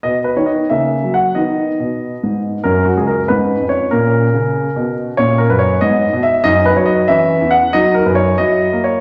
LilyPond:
<<
  \new Staff \with { instrumentName = "Grand piano" } { \time 6/8 \key b \major \tempo 4. = 94 << { dis''8 b'16 cis''16 dis''8 e''4 fis''8 | dis''2~ dis''8 r8 | ais'8 fis'16 gis'16 ais'8 b'4 cis''8 | ais'2~ ais'8 r8 |
cis''8 ais'16 b'16 cis''8 dis''4 e''8 | dis''8 b'16 cis''16 dis''8 e''4 fis''8 | dis''8 ais'16 b'16 cis''8 dis''4 cis''8 | } \\ { b4. ais4. | b2. | cis'4. cis'4. | cis'2. |
cis'4. b4. | dis'4. cis'4. | dis'4. e'4. | } >> }
  \new Staff \with { instrumentName = "Grand piano" } { \clef bass \time 6/8 \key b \major b,8. dis8. cis8. fis8. | dis4 b,4 gis,4 | fis,8. cis,8. gis,8. eis,8. | ais,4 cis4 b,4 |
ais,8. fis,8. gis,8. b,8. | fis,8. fis8. e8. e,8. | fis8. fis,8. fis8. ais8. | }
>>